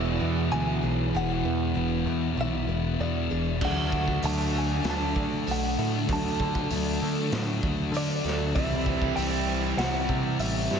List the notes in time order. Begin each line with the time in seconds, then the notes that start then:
Already playing: E1 E2 B2 E3 G#3 B3 G#4 E5
0.20 E2 B3
0.50 D2 E2 B2 E3 E4 G#5
0.83 B1 G#4
1.13 E1 E2 B2 E3 F#5
1.44 E2 B3
1.75 E1 E2 B2 E3
2.06 E2 B3
2.36 B1 E2 B2 E3
2.41 E5
2.67 E1 B3
3.00 E2 B2 E3 E4 D5
3.31 E1 G#4
3.61 D2 D3 F#3 A3 D4 F#4 F#5, kick, crash
3.92 A3, kick
4.08 kick
4.23 D2 D3 F#3 A3 D4 A5, open hi-hat, tambourine
4.55 A3 G#5
4.84 D2 D3 F#3 A3 D4, snare, open hi-hat
4.90 A5
5.16 D3 A3, kick
5.46 B1 D3 A3 D4, open hi-hat, tambourine
5.51 F#5
5.78 A2 A4
6.09 D2 D3 F#3 A3 D4, kick, open hi-hat
6.13 A5
6.40 D3 A3, kick
6.55 kick
6.70 D2 D3 F#3 A3 D4, open hi-hat, tambourine
7.02 D3 A3
7.32 A2 D3 F#3 A3 D4, snare, open hi-hat
7.63 D2 A3, kick
7.92 D3 A3 D4, open hi-hat, tambourine
7.97 D4 D5
8.24 D2 A4, snare
8.55 C2 C3 E3 G3 C4 E4 E5, kick, open hi-hat
8.86 C4, kick
9.02 kick
9.16 C2 C3 E3 G3 C4 G5, open hi-hat, tambourine
9.49 C4
9.77 C2 C3 E3 G3 C4 F#5, snare, open hi-hat
10.09 C3 C4, kick
10.39 A1 C3 G3 C4 E4 E5, open hi-hat, tambourine
10.71 G2 G4, snare